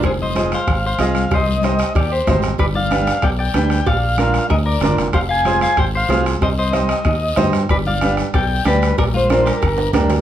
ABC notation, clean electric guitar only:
X:1
M:4/4
L:1/8
Q:1/4=188
K:Cm
V:1 name="Clean electric guitar"
A c2 c2 c3 | c4 G G2 z | =B d3 d d3 | d4 B B2 z |
c f2 f c c2 z | c c6 z | =B d2 z d2 G2 | B F2 G3 z2 |]